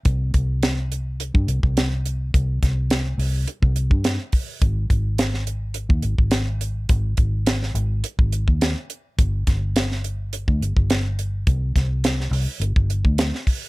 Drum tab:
HH |x-x-x-x-x-x-x-x-|x-x-x-o-x-x-x-o-|x-x-x-x-x-x-x-x-|x-x-x-x-x-x-x-x-|
SD |----o-------o---|--o-o-------o---|----oo------o---|----oo------o---|
BD |o-o------o-o----|o-o------o-o--o-|o-o------o-o----|o-o------o-o----|

HH |x-x-x-x-x-x-x-x-|x-x-x-o-x-x-x-o-|
SD |--o-oo------o---|--o-oo------oo--|
BD |o-o------o-o----|o-o------o-o--o-|